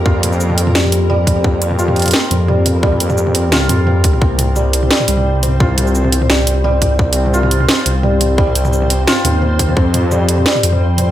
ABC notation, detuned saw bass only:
X:1
M:4/4
L:1/8
Q:"Swing 16ths" 1/4=173
K:Fm
V:1 name="Detuned saw bass" clef=bass
F,, F,,4 F,,2 F,, | F,,4 z F,,3- | F,, F,,4 F,,3 | C,,4 z C,,3- |
C,, C,,4 C,,2 C,, | C,,4 z C,,3- | C,, C,,3 z E,,3 | F,,4 z F,,3 |]